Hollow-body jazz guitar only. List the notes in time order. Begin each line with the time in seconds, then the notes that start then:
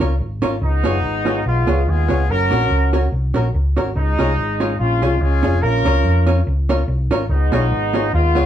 0.00 C#4 F4 A#4 C#5
0.42 C#4 F4 A#4 C#5
0.84 B3 F4 G#4 C#5
1.25 B3 F4 G#4 C#5
1.67 B3 F4 G#4 C#5
2.08 B3 F4 G#4 C#5
2.51 C#4 F#4 A#4 C#5
2.93 C#4 F#4 A#4 C#5
3.34 C#4 F#4 A#4 C#5
3.77 C#4 F#4 A#4 C#5
4.19 C#4 F4 G#4 C#5
4.60 C#4 F4 G#4 C#5
5.02 C#4 F4 G#4 C#5
5.43 C#4 F4 G#4 C#5
5.85 C#4 F4 A#4 C#5
6.27 C#4 F4 A#4 C#5
6.69 C#4 F4 A#4 C#5
7.11 C#4 F4 A#4 C#5
7.52 B3 F4 G#4 C#5
7.93 B3 F4 G#4 C#5
8.35 B3 F4 G#4 C#5